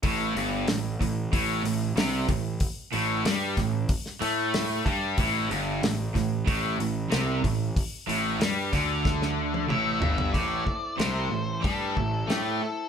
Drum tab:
HH |o-o-o-o-o-o-o-o-|o-o-o-o-o-o-o-o-|o-o-o-o-o-o-o-o-|o-o-o-o---------|
SD |----o-------o---|----o-o--o--o---|----o-o-----o---|----o-o-oo------|
T1 |----------------|----------------|----------------|-----------o----|
T2 |----------------|----------------|----------------|------------o---|
FT |----------------|----------------|----------------|--------------oo|
BD |o-----o-o-----o-|o-----o-o-----o-|o-----o-o-----o-|o-----o-o-------|

HH |o---o---o---o---|
SD |----o-------o---|
T1 |----------------|
T2 |----------------|
FT |----------------|
BD |o-o-----o-o-----|